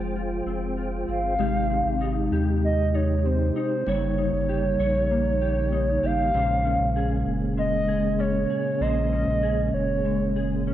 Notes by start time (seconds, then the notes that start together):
Already playing: F1 F3 G#3 C4 F4 G#4 C5 G5
0.16 F4
0.46 F1 C4
0.77 F4
1.08 G1 C4 F5
1.39 G#1 C3 G#3 D#4 G4
1.70 C4
1.85 G#1
2.01 D#4
2.32 D#2 G4
2.64 D#5
2.94 D#4 C#5
3.25 C4 C5
3.56 D#4 C5
3.87 G1 C#3 G3 A#3 D#4 C#5
4.18 D#4
4.33 G1
4.49 G4
4.79 A#1 C#5
5.11 A#3
5.42 G4
5.72 D#4
6.03 G#1 G4 F5
6.34 A#1 A#2 C#3 G#3 C#4 C5
6.65 C#4
6.79 A#1
6.96 G#4
7.26 F1
7.57 G#3 D#5
7.88 G#4
8.19 C#4 C#5
8.50 G#4
8.80 A#1 A#2 C5 D#5
9.12 C#4
9.27 A#1
9.43 G#4
9.74 F1 C#5
10.05 G#3
10.36 G#4
10.67 C#4